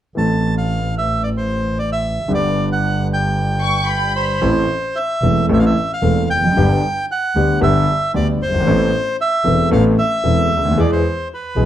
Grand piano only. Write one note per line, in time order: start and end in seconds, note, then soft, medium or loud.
0.15 2.19 A1 soft
0.15 2.19 A2 soft
0.15 2.18 E3 soft
0.15 2.19 A3 soft
0.15 2.20 C4 soft
0.15 2.20 A4 soft
2.28 4.31 G1 soft
2.28 4.31 G2 soft
2.28 4.30 D3 soft
2.28 4.31 G3 soft
2.28 4.31 B3 soft
2.28 4.32 G4 soft
4.41 4.64 A1 medium
4.41 4.64 A2 medium
4.41 4.64 E3 medium
4.41 4.64 A3 soft
4.41 4.64 C4 soft
4.41 4.64 A4 medium
5.23 5.45 E1 soft
5.23 5.45 E2 soft
5.23 5.45 E3 soft
5.23 5.45 A3 soft
5.23 5.45 C4 soft
5.23 5.46 A4 soft
5.49 5.72 A1 medium
5.49 5.72 A2 medium
5.49 5.72 E3 medium
5.49 5.72 A3 medium
5.49 5.72 C4 medium
5.49 5.72 A4 medium
6.02 6.25 E1 soft
6.02 6.25 E2 soft
6.02 6.25 E3 soft
6.02 6.25 A3 soft
6.02 6.25 C4 soft
6.02 6.25 A4 soft
6.36 6.43 E2 soft
6.44 6.50 F2 medium
6.50 6.57 F#2 medium
6.57 6.79 G1 medium
6.57 6.79 G2 medium
6.57 6.79 D3 medium
6.57 6.79 G3 soft
6.57 6.79 B3 medium
6.57 6.79 G4 medium
7.36 7.58 D2 soft
7.36 7.58 D3 soft
7.36 7.58 G3 soft
7.36 7.58 B3 soft
7.36 7.58 G4 soft
7.61 7.84 G1 medium
7.61 7.84 G2 medium
7.61 7.84 D3 medium
7.61 7.84 G3 medium
7.61 7.84 B3 medium
7.61 7.84 G4 medium
8.14 8.37 D2 soft
8.14 8.37 D3 soft
8.14 8.37 G3 soft
8.14 8.37 B3 soft
8.14 8.37 G4 soft
8.48 8.54 F#1 soft
8.54 8.61 G1 medium
8.60 8.67 G#1 medium
8.66 8.89 A1 medium
8.66 8.89 A2 medium
8.66 8.89 E3 medium
8.66 8.89 B3 medium
8.66 8.89 C4 medium
8.66 8.90 A4 medium
9.44 9.68 E1 medium
9.44 9.68 E2 soft
9.44 9.67 E3 soft
9.44 9.67 B3 soft
9.44 9.68 C4 soft
9.44 9.67 A4 soft
9.71 9.94 A1 medium
9.71 9.94 A2 medium
9.71 9.94 E3 medium
9.71 9.94 B3 medium
9.71 9.94 C4 medium
9.71 9.94 A4 medium
10.24 10.47 E1 soft
10.24 10.47 E2 soft
10.24 10.47 E3 soft
10.24 10.47 B3 soft
10.24 10.47 C4 soft
10.24 10.47 A4 soft
10.57 10.64 C#2 soft
10.65 10.71 D2 medium
10.71 10.78 D#2 medium
10.77 11.00 E2 medium
10.77 11.00 E3 medium
10.77 11.00 G#3 medium
10.77 11.00 B3 medium
10.77 11.00 G#4 medium
11.56 11.65 B1 soft
11.56 11.65 B2 soft
11.56 11.65 E3 soft
11.56 11.65 G#3 soft
11.56 11.65 B3 soft
11.56 11.65 G#4 soft